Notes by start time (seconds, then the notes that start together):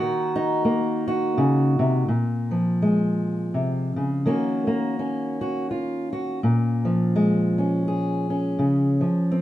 Already playing: D#3 A#3 F#4
0.36 D#4
0.65 A#3
1.08 F#4
1.37 C#3
1.79 C3
2.08 A#2
2.51 F3
2.82 G#3
3.54 C3
3.96 C#3
4.26 D#3 A#3 C#4 F#4
4.67 A#3
4.99 C#4
5.41 F#4
5.71 F4
6.13 F#4
6.43 A#2
6.85 F3
7.16 G#3
7.58 C#4
7.88 G#4
8.30 C#4
8.59 C#3
9.01 F3
9.32 C4